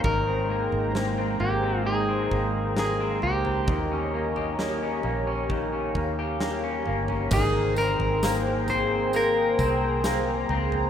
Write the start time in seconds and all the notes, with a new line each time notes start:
Already playing: A#3 C#4 G4 A#5
0.04 G#1 D#3 G#3 A#4 C5 G5, kick, floor tom
0.27 C4
0.49 A#3
0.72 G#1, floor tom
0.95 A#3, snare
1.18 C4
1.40 G#1 A#3 G4, floor tom
1.63 C4
1.86 D#3 G#4
2.09 C4
2.31 G#1 A#3, kick
2.76 A#3 G#4, snare
3.00 C4
3.22 C#2 A#3 G4, floor tom
3.45 C4, floor tom
3.68 D#2 D#3 G4 C#5 D#5, kick, floor tom
3.91 C#4
4.14 A#3
4.36 G4, floor tom
4.59 A#3, snare
4.82 C#4
5.03 A#1 A#3, floor tom
5.27 C#4
5.50 D#3 F5, kick
5.73 C#4
5.95 D#2 A#3, kick
6.19 G4
6.40 A#3, snare
6.63 C#4
6.86 G1 A#3, floor tom
7.08 C#4, floor tom
7.31 G#1 D#3 G#4 C5 G5 A#5, kick, floor tom, crash, tambourine
7.76 C4 A#4, tambourine
7.99 G#1, floor tom
8.23 A#3, snare, tambourine
8.68 C4 C5, floor tom, tambourine
9.13 A#3 A#4, tambourine
9.59 C2 C4, kick, tambourine
10.04 A#3, snare, tambourine
10.49 C#2 C4, floor tom
10.72 floor tom